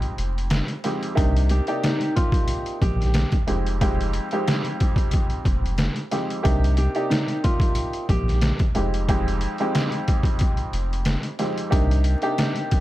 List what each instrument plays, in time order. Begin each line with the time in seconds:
Already playing: upright piano F2 G#3 C4 D#4 G4
0.02 closed hi-hat
0.18 sub bass F1, closed hi-hat
0.38 closed hi-hat
0.50 snare, closed hi-hat
0.68 closed hi-hat
0.84 upright piano F2 G#3 C4 D#4 G4, snare, closed hi-hat
1.03 closed hi-hat
1.15 sub bass C2, upright piano C3 A#3 D4 D#4 G4, kick, closed hi-hat
1.37 closed hi-hat
1.49 nylon-string guitar G4, closed hi-hat
1.67 upright piano C3 A#3 D#4 G4 D5, closed hi-hat
1.84 nylon-string guitar D#4, snare, closed hi-hat
2.01 closed hi-hat
2.16 nylon-string guitar F4, kick, closed hi-hat
2.32 kick, closed hi-hat
2.48 closed hi-hat
2.66 closed hi-hat
2.82 sub bass A#1, nylon-string guitar G4, kick, closed hi-hat
3.01 snare, closed hi-hat
3.14 snare, closed hi-hat
3.32 kick, closed hi-hat
3.47 sub bass F1, upright piano F2 G#3 C4 D#4 G4, closed hi-hat
3.66 closed hi-hat
3.81 upright piano F2 G#3 C4 D#4 G4, kick, closed hi-hat
4.01 closed hi-hat
4.13 closed hi-hat
4.31 upright piano F2 G#3 C4 D#4 G4, closed hi-hat
4.48 snare, closed hi-hat
4.65 closed hi-hat
4.80 kick, closed hi-hat
4.96 kick, closed hi-hat
5.11 kick, closed hi-hat
5.30 closed hi-hat
5.45 sub bass F1, kick, closed hi-hat
5.66 closed hi-hat
5.78 snare, closed hi-hat
5.96 closed hi-hat
6.11 upright piano F2 G#3 C4 D#4 G4, snare, closed hi-hat
6.30 closed hi-hat
6.43 sub bass C2, upright piano C3 A#3 D4 D#4 G4, kick, closed hi-hat
6.64 closed hi-hat
6.77 nylon-string guitar G4, closed hi-hat
6.95 upright piano C3 A#3 D#4 G4 D5, closed hi-hat
7.10 nylon-string guitar D#4, snare, closed hi-hat
7.28 closed hi-hat
7.44 nylon-string guitar F4, kick, closed hi-hat
7.60 kick, closed hi-hat
7.75 closed hi-hat
7.93 closed hi-hat
8.09 sub bass A#1, nylon-string guitar G4, kick, closed hi-hat
8.28 snare, closed hi-hat
8.41 snare, closed hi-hat
8.59 kick, closed hi-hat
8.75 sub bass F1, upright piano F2 G#3 C4 D#4 G4, closed hi-hat
8.94 closed hi-hat
9.09 upright piano F2 G#3 C4 D#4 G4, kick, closed hi-hat
9.28 closed hi-hat
9.41 closed hi-hat
9.58 upright piano F2 G#3 C4 D#4 G4, closed hi-hat
9.75 snare, closed hi-hat
9.92 closed hi-hat
10.08 kick, closed hi-hat
10.23 kick, closed hi-hat
10.39 kick, closed hi-hat
10.57 closed hi-hat
10.73 sub bass F1, closed hi-hat
10.93 closed hi-hat
11.05 snare, closed hi-hat
11.23 closed hi-hat
11.39 upright piano F2 G#3 C4 D#4 G4, snare, closed hi-hat
11.58 closed hi-hat
11.70 sub bass C2, upright piano C3 A#3 D4 D#4 G4, kick, closed hi-hat
11.91 closed hi-hat
12.04 closed hi-hat
12.22 upright piano C3 A#3 D4 D#4 G4, closed hi-hat
12.38 snare, closed hi-hat
12.56 closed hi-hat
12.71 kick, closed hi-hat